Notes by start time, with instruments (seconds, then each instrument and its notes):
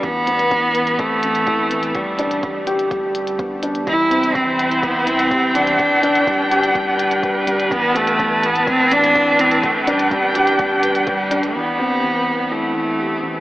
0.03 analog synth bass A1, felt piano E3, cello B3, kick, closed hi-hat
0.27 felt piano B3, closed hi-hat
0.39 closed hi-hat
0.51 felt piano E3, kick, closed hi-hat
0.75 closed hi-hat
0.87 closed hi-hat
0.99 cello A3, felt piano C4, kick, closed hi-hat
1.23 felt piano E3, closed hi-hat
1.35 closed hi-hat
1.47 felt piano E4, kick, closed hi-hat
1.71 felt piano E3, closed hi-hat
1.83 closed hi-hat
1.95 analog synth bass G1, cello G3, kick, closed hi-hat
2.19 felt piano D4, closed hi-hat
2.31 closed hi-hat
2.43 felt piano G3, kick, closed hi-hat
2.67 felt piano G4, closed hi-hat
2.79 closed hi-hat
2.91 felt piano G3, kick, closed hi-hat
3.15 closed hi-hat
3.27 closed hi-hat
3.39 felt piano B3, kick, closed hi-hat
3.63 felt piano D4, closed hi-hat
3.75 closed hi-hat
3.87 analog synth bass C2, felt piano E3, string quartet E4 C5 G5, cello E4, kick, closed hi-hat
4.11 felt piano C4, closed hi-hat
4.23 closed hi-hat
4.35 felt piano E3, cello C4, kick, closed hi-hat
4.59 closed hi-hat
4.71 closed hi-hat
4.83 cello B3, felt piano E4, kick, closed hi-hat
5.07 felt piano E3, cello C4, closed hi-hat
5.19 closed hi-hat
5.31 felt piano G4, kick, closed hi-hat
5.55 felt piano E3, cello D4, closed hi-hat
5.67 closed hi-hat
5.78 analog synth bass G1, string quartet D4 B4, kick, closed hi-hat
6.03 felt piano D4, closed hi-hat
6.15 closed hi-hat
6.27 felt piano G3, kick, closed hi-hat
6.51 felt piano G4, closed hi-hat
6.63 closed hi-hat
6.75 felt piano G3, kick, closed hi-hat
6.99 closed hi-hat
7.11 closed hi-hat
7.23 cello G3, felt piano B4, kick, closed hi-hat
7.47 felt piano G3, closed hi-hat
7.60 closed hi-hat
7.71 analog synth bass A1, felt piano E3, cello B3, string quartet A5, kick, closed hi-hat
7.95 cello A3, felt piano B3, closed hi-hat
8.07 closed hi-hat
8.19 felt piano E3, kick, closed hi-hat
8.43 cello B3, closed hi-hat
8.55 closed hi-hat
8.67 felt piano C4, cello C4, kick, closed hi-hat
8.91 felt piano E3, cello D4, closed hi-hat
9.04 closed hi-hat
9.15 felt piano E4, kick, closed hi-hat
9.39 felt piano E3, cello C4, closed hi-hat
9.51 closed hi-hat
9.63 analog synth bass G1, cello A3, string quartet D4 G5, kick, closed hi-hat
9.87 cello G3, felt piano D4, closed hi-hat
9.99 closed hi-hat
10.11 felt piano G3, kick, closed hi-hat
10.35 felt piano G4, closed hi-hat
10.47 closed hi-hat
10.59 felt piano G3, kick, closed hi-hat
10.83 felt piano B4, closed hi-hat
10.95 closed hi-hat
11.07 cello G3, felt piano B4, kick, closed hi-hat
11.31 felt piano D4, closed hi-hat
11.43 closed hi-hat
11.55 string quartet C3 G3 E4, felt piano E3, cello B3
11.79 felt piano C4
12.03 felt piano E3
12.51 cello A3, felt piano E4
12.75 felt piano E3
12.99 felt piano G4
13.23 felt piano E3